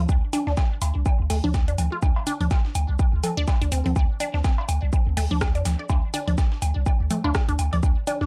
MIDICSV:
0, 0, Header, 1, 4, 480
1, 0, Start_track
1, 0, Key_signature, -1, "minor"
1, 0, Tempo, 483871
1, 88, Time_signature, 4, 2, 24, 8
1, 8195, End_track
2, 0, Start_track
2, 0, Title_t, "Synth arpeggio sound"
2, 0, Program_c, 0, 84
2, 328, Note_on_c, 0, 62, 104
2, 386, Note_off_c, 0, 62, 0
2, 466, Note_on_c, 0, 62, 76
2, 509, Note_off_c, 0, 62, 0
2, 1289, Note_on_c, 0, 57, 81
2, 1323, Note_off_c, 0, 57, 0
2, 1426, Note_on_c, 0, 62, 97
2, 1470, Note_off_c, 0, 62, 0
2, 1666, Note_on_c, 0, 62, 73
2, 1709, Note_off_c, 0, 62, 0
2, 1906, Note_on_c, 0, 65, 75
2, 1932, Note_off_c, 0, 65, 0
2, 2248, Note_on_c, 0, 62, 102
2, 2306, Note_off_c, 0, 62, 0
2, 2387, Note_on_c, 0, 62, 71
2, 2430, Note_off_c, 0, 62, 0
2, 3209, Note_on_c, 0, 69, 75
2, 3296, Note_off_c, 0, 69, 0
2, 3346, Note_on_c, 0, 62, 100
2, 3411, Note_off_c, 0, 62, 0
2, 3586, Note_on_c, 0, 62, 74
2, 3629, Note_off_c, 0, 62, 0
2, 3688, Note_on_c, 0, 60, 78
2, 3776, Note_off_c, 0, 60, 0
2, 3826, Note_on_c, 0, 60, 77
2, 3852, Note_off_c, 0, 60, 0
2, 4168, Note_on_c, 0, 62, 103
2, 4227, Note_off_c, 0, 62, 0
2, 4305, Note_on_c, 0, 62, 75
2, 4349, Note_off_c, 0, 62, 0
2, 5129, Note_on_c, 0, 57, 81
2, 5164, Note_off_c, 0, 57, 0
2, 5267, Note_on_c, 0, 62, 100
2, 5310, Note_off_c, 0, 62, 0
2, 5506, Note_on_c, 0, 62, 74
2, 5549, Note_off_c, 0, 62, 0
2, 5746, Note_on_c, 0, 74, 77
2, 5790, Note_off_c, 0, 74, 0
2, 6088, Note_on_c, 0, 62, 101
2, 6146, Note_off_c, 0, 62, 0
2, 6225, Note_on_c, 0, 62, 78
2, 6269, Note_off_c, 0, 62, 0
2, 7048, Note_on_c, 0, 57, 79
2, 7083, Note_off_c, 0, 57, 0
2, 7185, Note_on_c, 0, 62, 103
2, 7229, Note_off_c, 0, 62, 0
2, 7426, Note_on_c, 0, 62, 76
2, 7469, Note_off_c, 0, 62, 0
2, 7666, Note_on_c, 0, 74, 79
2, 7709, Note_off_c, 0, 74, 0
2, 8008, Note_on_c, 0, 62, 103
2, 8066, Note_off_c, 0, 62, 0
2, 8146, Note_on_c, 0, 62, 77
2, 8189, Note_off_c, 0, 62, 0
2, 8195, End_track
3, 0, Start_track
3, 0, Title_t, "Sub bass"
3, 0, Program_c, 1, 38
3, 89, Note_on_c, 1, 38, 97
3, 192, Note_off_c, 1, 38, 0
3, 466, Note_on_c, 1, 38, 103
3, 543, Note_off_c, 1, 38, 0
3, 809, Note_on_c, 1, 38, 89
3, 912, Note_off_c, 1, 38, 0
3, 947, Note_on_c, 1, 36, 89
3, 1023, Note_off_c, 1, 36, 0
3, 1187, Note_on_c, 1, 38, 103
3, 1263, Note_off_c, 1, 38, 0
3, 1289, Note_on_c, 1, 38, 88
3, 1392, Note_off_c, 1, 38, 0
3, 1427, Note_on_c, 1, 38, 85
3, 1667, Note_on_c, 1, 41, 86
3, 1682, Note_off_c, 1, 38, 0
3, 1743, Note_off_c, 1, 41, 0
3, 1768, Note_on_c, 1, 38, 80
3, 1871, Note_off_c, 1, 38, 0
3, 2009, Note_on_c, 1, 38, 91
3, 2112, Note_off_c, 1, 38, 0
3, 2387, Note_on_c, 1, 38, 105
3, 2463, Note_off_c, 1, 38, 0
3, 2729, Note_on_c, 1, 38, 87
3, 2832, Note_off_c, 1, 38, 0
3, 2867, Note_on_c, 1, 36, 89
3, 2943, Note_off_c, 1, 36, 0
3, 3107, Note_on_c, 1, 38, 94
3, 3183, Note_off_c, 1, 38, 0
3, 3347, Note_on_c, 1, 38, 78
3, 3423, Note_off_c, 1, 38, 0
3, 3587, Note_on_c, 1, 38, 103
3, 3663, Note_off_c, 1, 38, 0
3, 3689, Note_on_c, 1, 38, 84
3, 3792, Note_off_c, 1, 38, 0
3, 3826, Note_on_c, 1, 38, 86
3, 3903, Note_off_c, 1, 38, 0
3, 3929, Note_on_c, 1, 38, 96
3, 4032, Note_off_c, 1, 38, 0
3, 4306, Note_on_c, 1, 38, 105
3, 4383, Note_off_c, 1, 38, 0
3, 4649, Note_on_c, 1, 38, 90
3, 4752, Note_off_c, 1, 38, 0
3, 4787, Note_on_c, 1, 36, 94
3, 4863, Note_off_c, 1, 36, 0
3, 5027, Note_on_c, 1, 38, 103
3, 5103, Note_off_c, 1, 38, 0
3, 5129, Note_on_c, 1, 38, 84
3, 5232, Note_off_c, 1, 38, 0
3, 5266, Note_on_c, 1, 38, 80
3, 5507, Note_on_c, 1, 41, 89
3, 5522, Note_off_c, 1, 38, 0
3, 5583, Note_off_c, 1, 41, 0
3, 5608, Note_on_c, 1, 38, 80
3, 5712, Note_off_c, 1, 38, 0
3, 5849, Note_on_c, 1, 38, 98
3, 5952, Note_off_c, 1, 38, 0
3, 6226, Note_on_c, 1, 38, 107
3, 6303, Note_off_c, 1, 38, 0
3, 6568, Note_on_c, 1, 38, 92
3, 6671, Note_off_c, 1, 38, 0
3, 6707, Note_on_c, 1, 36, 96
3, 6783, Note_off_c, 1, 36, 0
3, 6946, Note_on_c, 1, 38, 90
3, 7023, Note_off_c, 1, 38, 0
3, 7186, Note_on_c, 1, 38, 78
3, 7263, Note_off_c, 1, 38, 0
3, 7426, Note_on_c, 1, 38, 100
3, 7503, Note_off_c, 1, 38, 0
3, 7528, Note_on_c, 1, 38, 84
3, 7631, Note_off_c, 1, 38, 0
3, 7667, Note_on_c, 1, 38, 86
3, 7743, Note_off_c, 1, 38, 0
3, 7768, Note_on_c, 1, 38, 100
3, 7871, Note_off_c, 1, 38, 0
3, 8146, Note_on_c, 1, 38, 105
3, 8195, Note_off_c, 1, 38, 0
3, 8195, End_track
4, 0, Start_track
4, 0, Title_t, "Drums"
4, 88, Note_on_c, 9, 77, 46
4, 89, Note_on_c, 9, 36, 117
4, 89, Note_on_c, 9, 82, 88
4, 187, Note_off_c, 9, 77, 0
4, 188, Note_off_c, 9, 36, 0
4, 188, Note_off_c, 9, 82, 0
4, 328, Note_on_c, 9, 77, 80
4, 329, Note_on_c, 9, 46, 92
4, 329, Note_on_c, 9, 82, 68
4, 428, Note_off_c, 9, 46, 0
4, 428, Note_off_c, 9, 77, 0
4, 428, Note_off_c, 9, 82, 0
4, 466, Note_on_c, 9, 38, 41
4, 566, Note_off_c, 9, 38, 0
4, 568, Note_on_c, 9, 38, 112
4, 568, Note_on_c, 9, 82, 80
4, 569, Note_on_c, 9, 36, 105
4, 569, Note_on_c, 9, 77, 82
4, 667, Note_off_c, 9, 38, 0
4, 667, Note_off_c, 9, 82, 0
4, 668, Note_off_c, 9, 36, 0
4, 668, Note_off_c, 9, 77, 0
4, 809, Note_on_c, 9, 46, 92
4, 809, Note_on_c, 9, 82, 68
4, 810, Note_on_c, 9, 56, 60
4, 810, Note_on_c, 9, 77, 45
4, 908, Note_off_c, 9, 46, 0
4, 908, Note_off_c, 9, 82, 0
4, 909, Note_off_c, 9, 56, 0
4, 909, Note_off_c, 9, 77, 0
4, 1049, Note_on_c, 9, 36, 116
4, 1049, Note_on_c, 9, 77, 83
4, 1049, Note_on_c, 9, 82, 87
4, 1148, Note_off_c, 9, 36, 0
4, 1148, Note_off_c, 9, 82, 0
4, 1149, Note_off_c, 9, 77, 0
4, 1289, Note_on_c, 9, 46, 97
4, 1289, Note_on_c, 9, 77, 79
4, 1388, Note_off_c, 9, 46, 0
4, 1388, Note_off_c, 9, 77, 0
4, 1427, Note_on_c, 9, 64, 90
4, 1526, Note_off_c, 9, 64, 0
4, 1529, Note_on_c, 9, 36, 110
4, 1529, Note_on_c, 9, 38, 113
4, 1529, Note_on_c, 9, 77, 46
4, 1529, Note_on_c, 9, 82, 86
4, 1628, Note_off_c, 9, 36, 0
4, 1628, Note_off_c, 9, 38, 0
4, 1628, Note_off_c, 9, 77, 0
4, 1628, Note_off_c, 9, 82, 0
4, 1667, Note_on_c, 9, 46, 38
4, 1766, Note_off_c, 9, 46, 0
4, 1769, Note_on_c, 9, 46, 94
4, 1769, Note_on_c, 9, 64, 74
4, 1769, Note_on_c, 9, 77, 76
4, 1769, Note_on_c, 9, 82, 67
4, 1868, Note_off_c, 9, 46, 0
4, 1868, Note_off_c, 9, 64, 0
4, 1868, Note_off_c, 9, 77, 0
4, 1868, Note_off_c, 9, 82, 0
4, 2009, Note_on_c, 9, 36, 124
4, 2009, Note_on_c, 9, 77, 79
4, 2009, Note_on_c, 9, 82, 91
4, 2108, Note_off_c, 9, 36, 0
4, 2108, Note_off_c, 9, 77, 0
4, 2108, Note_off_c, 9, 82, 0
4, 2146, Note_on_c, 9, 56, 61
4, 2245, Note_off_c, 9, 56, 0
4, 2249, Note_on_c, 9, 46, 92
4, 2249, Note_on_c, 9, 77, 46
4, 2249, Note_on_c, 9, 82, 66
4, 2348, Note_off_c, 9, 46, 0
4, 2348, Note_off_c, 9, 77, 0
4, 2348, Note_off_c, 9, 82, 0
4, 2386, Note_on_c, 9, 64, 82
4, 2387, Note_on_c, 9, 42, 42
4, 2485, Note_off_c, 9, 64, 0
4, 2486, Note_off_c, 9, 42, 0
4, 2489, Note_on_c, 9, 36, 108
4, 2489, Note_on_c, 9, 38, 108
4, 2489, Note_on_c, 9, 77, 80
4, 2489, Note_on_c, 9, 82, 86
4, 2588, Note_off_c, 9, 36, 0
4, 2588, Note_off_c, 9, 38, 0
4, 2588, Note_off_c, 9, 82, 0
4, 2589, Note_off_c, 9, 77, 0
4, 2627, Note_on_c, 9, 38, 42
4, 2726, Note_off_c, 9, 38, 0
4, 2728, Note_on_c, 9, 82, 65
4, 2729, Note_on_c, 9, 46, 94
4, 2730, Note_on_c, 9, 77, 76
4, 2828, Note_off_c, 9, 82, 0
4, 2829, Note_off_c, 9, 46, 0
4, 2829, Note_off_c, 9, 77, 0
4, 2968, Note_on_c, 9, 82, 84
4, 2969, Note_on_c, 9, 36, 119
4, 2970, Note_on_c, 9, 77, 46
4, 3067, Note_off_c, 9, 82, 0
4, 3068, Note_off_c, 9, 36, 0
4, 3069, Note_off_c, 9, 77, 0
4, 3209, Note_on_c, 9, 82, 65
4, 3210, Note_on_c, 9, 46, 94
4, 3210, Note_on_c, 9, 64, 88
4, 3210, Note_on_c, 9, 77, 80
4, 3308, Note_off_c, 9, 82, 0
4, 3309, Note_off_c, 9, 46, 0
4, 3309, Note_off_c, 9, 64, 0
4, 3309, Note_off_c, 9, 77, 0
4, 3448, Note_on_c, 9, 38, 112
4, 3448, Note_on_c, 9, 82, 82
4, 3449, Note_on_c, 9, 36, 111
4, 3449, Note_on_c, 9, 56, 60
4, 3449, Note_on_c, 9, 77, 79
4, 3547, Note_off_c, 9, 38, 0
4, 3547, Note_off_c, 9, 82, 0
4, 3548, Note_off_c, 9, 36, 0
4, 3549, Note_off_c, 9, 56, 0
4, 3549, Note_off_c, 9, 77, 0
4, 3587, Note_on_c, 9, 46, 39
4, 3687, Note_off_c, 9, 46, 0
4, 3689, Note_on_c, 9, 46, 94
4, 3689, Note_on_c, 9, 77, 44
4, 3689, Note_on_c, 9, 82, 67
4, 3788, Note_off_c, 9, 77, 0
4, 3788, Note_off_c, 9, 82, 0
4, 3789, Note_off_c, 9, 46, 0
4, 3826, Note_on_c, 9, 42, 43
4, 3827, Note_on_c, 9, 64, 81
4, 3925, Note_off_c, 9, 42, 0
4, 3926, Note_off_c, 9, 64, 0
4, 3929, Note_on_c, 9, 36, 121
4, 3929, Note_on_c, 9, 77, 78
4, 3929, Note_on_c, 9, 82, 90
4, 4028, Note_off_c, 9, 36, 0
4, 4028, Note_off_c, 9, 77, 0
4, 4028, Note_off_c, 9, 82, 0
4, 4168, Note_on_c, 9, 82, 69
4, 4169, Note_on_c, 9, 46, 86
4, 4169, Note_on_c, 9, 77, 45
4, 4267, Note_off_c, 9, 82, 0
4, 4268, Note_off_c, 9, 46, 0
4, 4268, Note_off_c, 9, 77, 0
4, 4306, Note_on_c, 9, 38, 41
4, 4405, Note_off_c, 9, 38, 0
4, 4409, Note_on_c, 9, 36, 103
4, 4409, Note_on_c, 9, 38, 110
4, 4409, Note_on_c, 9, 77, 75
4, 4409, Note_on_c, 9, 82, 84
4, 4508, Note_off_c, 9, 36, 0
4, 4508, Note_off_c, 9, 38, 0
4, 4508, Note_off_c, 9, 77, 0
4, 4508, Note_off_c, 9, 82, 0
4, 4546, Note_on_c, 9, 56, 63
4, 4645, Note_off_c, 9, 56, 0
4, 4648, Note_on_c, 9, 77, 80
4, 4649, Note_on_c, 9, 46, 86
4, 4649, Note_on_c, 9, 82, 70
4, 4747, Note_off_c, 9, 77, 0
4, 4748, Note_off_c, 9, 46, 0
4, 4748, Note_off_c, 9, 82, 0
4, 4889, Note_on_c, 9, 36, 110
4, 4889, Note_on_c, 9, 77, 45
4, 4889, Note_on_c, 9, 82, 88
4, 4988, Note_off_c, 9, 36, 0
4, 4988, Note_off_c, 9, 77, 0
4, 4988, Note_off_c, 9, 82, 0
4, 5128, Note_on_c, 9, 77, 76
4, 5129, Note_on_c, 9, 46, 93
4, 5227, Note_off_c, 9, 77, 0
4, 5228, Note_off_c, 9, 46, 0
4, 5266, Note_on_c, 9, 64, 88
4, 5365, Note_off_c, 9, 64, 0
4, 5368, Note_on_c, 9, 38, 116
4, 5368, Note_on_c, 9, 77, 80
4, 5368, Note_on_c, 9, 82, 85
4, 5369, Note_on_c, 9, 36, 103
4, 5369, Note_on_c, 9, 37, 97
4, 5467, Note_off_c, 9, 38, 0
4, 5467, Note_off_c, 9, 77, 0
4, 5467, Note_off_c, 9, 82, 0
4, 5468, Note_off_c, 9, 36, 0
4, 5468, Note_off_c, 9, 37, 0
4, 5506, Note_on_c, 9, 46, 37
4, 5606, Note_off_c, 9, 46, 0
4, 5608, Note_on_c, 9, 38, 104
4, 5608, Note_on_c, 9, 64, 73
4, 5608, Note_on_c, 9, 77, 44
4, 5608, Note_on_c, 9, 82, 77
4, 5609, Note_on_c, 9, 46, 94
4, 5707, Note_off_c, 9, 64, 0
4, 5707, Note_off_c, 9, 77, 0
4, 5708, Note_off_c, 9, 38, 0
4, 5708, Note_off_c, 9, 46, 0
4, 5708, Note_off_c, 9, 82, 0
4, 5848, Note_on_c, 9, 56, 65
4, 5848, Note_on_c, 9, 77, 73
4, 5849, Note_on_c, 9, 36, 112
4, 5849, Note_on_c, 9, 82, 92
4, 5947, Note_off_c, 9, 56, 0
4, 5947, Note_off_c, 9, 77, 0
4, 5948, Note_off_c, 9, 36, 0
4, 5948, Note_off_c, 9, 82, 0
4, 6088, Note_on_c, 9, 77, 74
4, 6088, Note_on_c, 9, 82, 69
4, 6089, Note_on_c, 9, 46, 82
4, 6187, Note_off_c, 9, 77, 0
4, 6188, Note_off_c, 9, 46, 0
4, 6188, Note_off_c, 9, 82, 0
4, 6226, Note_on_c, 9, 42, 41
4, 6226, Note_on_c, 9, 64, 88
4, 6325, Note_off_c, 9, 42, 0
4, 6325, Note_off_c, 9, 64, 0
4, 6328, Note_on_c, 9, 38, 112
4, 6328, Note_on_c, 9, 77, 42
4, 6328, Note_on_c, 9, 82, 88
4, 6329, Note_on_c, 9, 36, 103
4, 6427, Note_off_c, 9, 38, 0
4, 6427, Note_off_c, 9, 77, 0
4, 6427, Note_off_c, 9, 82, 0
4, 6428, Note_off_c, 9, 36, 0
4, 6466, Note_on_c, 9, 38, 43
4, 6565, Note_off_c, 9, 38, 0
4, 6568, Note_on_c, 9, 46, 90
4, 6568, Note_on_c, 9, 77, 73
4, 6568, Note_on_c, 9, 82, 68
4, 6667, Note_off_c, 9, 77, 0
4, 6667, Note_off_c, 9, 82, 0
4, 6668, Note_off_c, 9, 46, 0
4, 6808, Note_on_c, 9, 36, 106
4, 6808, Note_on_c, 9, 77, 76
4, 6808, Note_on_c, 9, 82, 91
4, 6907, Note_off_c, 9, 77, 0
4, 6907, Note_off_c, 9, 82, 0
4, 6908, Note_off_c, 9, 36, 0
4, 7048, Note_on_c, 9, 46, 91
4, 7048, Note_on_c, 9, 64, 86
4, 7048, Note_on_c, 9, 77, 43
4, 7048, Note_on_c, 9, 82, 69
4, 7147, Note_off_c, 9, 64, 0
4, 7147, Note_off_c, 9, 77, 0
4, 7148, Note_off_c, 9, 46, 0
4, 7148, Note_off_c, 9, 82, 0
4, 7186, Note_on_c, 9, 56, 63
4, 7285, Note_off_c, 9, 56, 0
4, 7288, Note_on_c, 9, 36, 100
4, 7288, Note_on_c, 9, 37, 97
4, 7288, Note_on_c, 9, 38, 119
4, 7288, Note_on_c, 9, 77, 71
4, 7288, Note_on_c, 9, 82, 84
4, 7387, Note_off_c, 9, 37, 0
4, 7387, Note_off_c, 9, 38, 0
4, 7387, Note_off_c, 9, 77, 0
4, 7387, Note_off_c, 9, 82, 0
4, 7388, Note_off_c, 9, 36, 0
4, 7426, Note_on_c, 9, 46, 36
4, 7525, Note_off_c, 9, 46, 0
4, 7528, Note_on_c, 9, 46, 91
4, 7528, Note_on_c, 9, 77, 72
4, 7528, Note_on_c, 9, 82, 69
4, 7627, Note_off_c, 9, 46, 0
4, 7627, Note_off_c, 9, 77, 0
4, 7627, Note_off_c, 9, 82, 0
4, 7665, Note_on_c, 9, 64, 78
4, 7666, Note_on_c, 9, 42, 42
4, 7765, Note_off_c, 9, 42, 0
4, 7765, Note_off_c, 9, 64, 0
4, 7768, Note_on_c, 9, 36, 115
4, 7768, Note_on_c, 9, 77, 42
4, 7768, Note_on_c, 9, 82, 91
4, 7867, Note_off_c, 9, 77, 0
4, 7867, Note_off_c, 9, 82, 0
4, 7868, Note_off_c, 9, 36, 0
4, 8008, Note_on_c, 9, 46, 84
4, 8008, Note_on_c, 9, 77, 77
4, 8008, Note_on_c, 9, 82, 66
4, 8107, Note_off_c, 9, 46, 0
4, 8107, Note_off_c, 9, 77, 0
4, 8107, Note_off_c, 9, 82, 0
4, 8145, Note_on_c, 9, 38, 42
4, 8195, Note_off_c, 9, 38, 0
4, 8195, End_track
0, 0, End_of_file